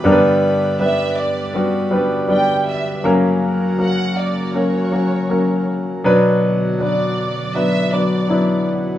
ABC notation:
X:1
M:4/4
L:1/8
Q:1/4=80
K:Bm
V:1 name="Violin section"
z2 e d z2 g e | z2 f d c3 z | z2 d2 e d2 z |]
V:2 name="Grand piano"
[G,B,D^AB]2 [G,B,DB]2 [G,B,DF] [G,B,DB] [G,B,Dd]2 | [F,^A,C^A]2 [F,A,A]2 [F,A,CA] [F,A,CF] [F,A,CA]2 | [F,B,DB]2 [F,B,DB]2 [F,B,DB] [F,B,DB] [F,B,DE]2 |]
V:3 name="Grand piano" clef=bass
[G,,D,]8 | [F,,C,]8 | B,,8 |]
V:4 name="Analog synth pad"
[D,G,B,DB]8 | [C,F,^A,F^A]8 | [D,F,B,F]8 |]